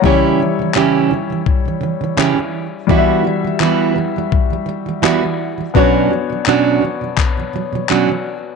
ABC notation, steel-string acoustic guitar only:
X:1
M:4/4
L:1/16
Q:"Swing 16ths" 1/4=84
K:Bm
V:1 name="Steel-string acoustic guitar" clef=bass
[C,E,CEG]2 [C,E,] [C,E,] [C,E,CEG]2 [C,E,] [C,E,]2 [C,E,] [C,E,] [C,E,] [C,E,CEG] [C,E,]2 z | [E,G,B,EF]2 [E,G,] [E,G,] [E,G,B,EF]2 [E,G,] [E,G,]2 [E,G,] [E,G,] [E,G,] [E,G,B,EF] [E,G,]2 [E,G,] | [B,,F,CDF]2 [B,,F,] [B,,F,] [B,,F,CDF]2 [B,,F,] [B,,F,]2 [B,,F,] [B,,F,] [B,,F,] [B,,F,CDF] [B,,F,]2 z |]